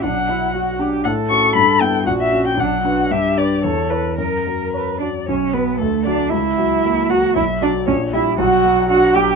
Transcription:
<<
  \new Staff \with { instrumentName = "Violin" } { \time 2/4 \key b \minor \tempo 4 = 116 fis''4. r8 | fis''8 cis'''8 b''8 g''8 | fis''16 e''8 g''16 fis''4 | e''8 d''8 cis''8 b'8 |
ais'4. d''8 | cis''8 b'8 a'8 d''8 | e''4. fis''8 | e''8 d''8 cis''8 e''8 |
fis''4 fis''8 g''8 | }
  \new Staff \with { instrumentName = "Cello" } { \time 2/4 \key b \minor d'8 e'8 fis'8 g'8 | a'2 | fis'4 d'8 fis'8 | g'4 a'4 |
ais'4 b'8 d'8 | cis'8 b8 a8 d'8 | e'4. fis'8 | e'8 d'8 cis'8 e'8 |
fis'4 fis'8 g'8 | }
  \new Staff \with { instrumentName = "Grand piano" } { \time 2/4 \key b \minor b,,8 fis8 fis'8 d'8 | a,8 <cis' fis'>8 g,8 <b e'>8 | ais,,8 <cis' fis'>8 b,,8 <d' b'>8 | g,8 <d' b'>8 e,8 <e' cis''>8 |
fis,8 fis8 cis''8 fis'8 | b,,8 <fis b'>8 d,8 <fis fis'>8 | cis,8 <fis fis'>8 <ais fis'>8 <fis fis'>8 | b,,8 <fis fis'>8 ais,,8 <g e'>8 |
b,,8 <fis fis'>8 <d' fis'>8 <fis fis'>8 | }
>>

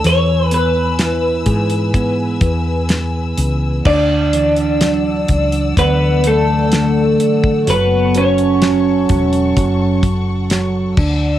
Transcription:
<<
  \new Staff \with { instrumentName = "String section" } { \time 4/4 \key d \lydian \tempo 4 = 63 << { <b' e'''>1 | <d'' e'''>1 | <a' cis'''>2.~ <a' cis'''>8 <d'' e'''>8 | } \\ { gis''1 | fis''1~ | fis''1 | } >> }
  \new Staff \with { instrumentName = "Clean electric guitar" } { \time 4/4 \key d \lydian cis''8 b'2. r8 | <d' d''>2 <b b'>8 <a a'>4. | <b b'>8 <cis' cis''>2 r4. | }
  \new Staff \with { instrumentName = "Tine electric piano" } { \clef bass \time 4/4 \key d \lydian e8 b8 e'8 gis'8 b2 | d'8 e8 fis4 d4 d4 | fis8 fis8 fis8 fis8 fis4 fis8 d'8 | }
  \new Staff \with { instrumentName = "Fretless electric bass" } { \clef bass \time 4/4 \key d \lydian e,4. gis,4 e,4 cis,8 | d,4. cis,8 d,4. r8 | fis,,4. e,,8 fis,,4. d,8 | }
  \new DrumStaff \with { instrumentName = "Drums" } \drummode { \time 4/4 hh8 hh8 <hh sn>8 <hh bd>16 hh16 <hh bd>8 <hh bd>8 <hh sn>8 hh8 | <cymc bd>8 hh16 hh16 <hh sn>8 <hh bd>16 hh16 <hh bd>8 hh8 <hh sn>8 hh16 bd16 | hh8 hh16 hh16 <hh sn>8 <hh bd>16 hh16 <hh bd>8 <hh bd>8 <hh sn>8 <cymc bd>8 | }
>>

